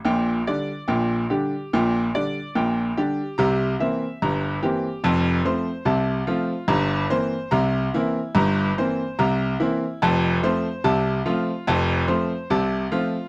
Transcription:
X:1
M:2/4
L:1/8
Q:1/4=72
K:F
V:1 name="Grand piano"
[B,,,B,,g] [D,G,Dd] [B,,,B,,g] [D,G,DG] | [B,,,B,,g] [D,G,Dd] [B,,,B,,g] [D,G,DG] | [C,,C,b] [E,B,Ce] [G,,,G,,b] [E,B,CG] | [F,,,F,,a] [F,A,Cc] [C,,C,a] [F,A,CF] |
[G,,,G,,b] [E,B,Cc] [C,,C,b] [E,B,CE] | [G,,,G,,b] [E,B,Cc] [C,,C,b] [E,B,CE] | [F,,,F,,a] [F,A,Cc] [C,,C,a] [F,A,CF] | [F,,,F,,a] [F,A,Cc] [C,,C,a] [F,A,CF] |]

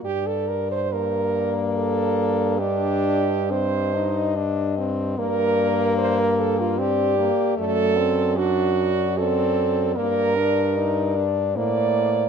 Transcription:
X:1
M:3/4
L:1/16
Q:1/4=74
K:Gm
V:1 name="French horn"
d4 d8 | e4 e8 | d6 z2 d4 | d4 d4 d4 |
d2 d6 c4 |]
V:2 name="French horn"
G A B c B4 A4 | G4 c4 z4 | B4 c B A F G4 | A4 ^F4 A4 |
B6- B z d4 |]
V:3 name="French horn"
z4 B,8 | D4 C2 E2 D2 C2 | B,8 C2 B,2 | A,2 C2 D2 z2 C4 |
B,2 D2 E2 D2 B,4 |]
V:4 name="French horn" clef=bass
G,,12- | G,,12 | G,,8- G,,2 z2 | ^F,,12 |
G,,8 A,,4 |]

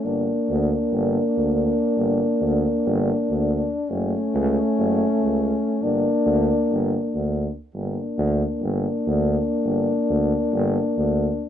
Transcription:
X:1
M:9/8
L:1/8
Q:3/8=94
K:none
V:1 name="Euphonium"
D8- D- | D8- D | ^C8- C | D8 z |
D8- D- | D8- D |]
V:2 name="Euphonium"
_B,8- B,- | _B,8- B, | A,8- A, | _B,8 z |
_B,8- B,- | _B,8- B, |]
V:3 name="Tuba" clef=bass
G,,,2 D,,2 G,,,2 D,,3 | G,,,2 D,,2 G,,,2 D,,3 | ^F,,,2 ^C,,2 F,,,2 C,,3 | G,,,2 D,,2 G,,,2 D,,3 |
G,,,2 D,,2 G,,,2 D,,3 | G,,,2 D,,2 G,,,2 D,,3 |]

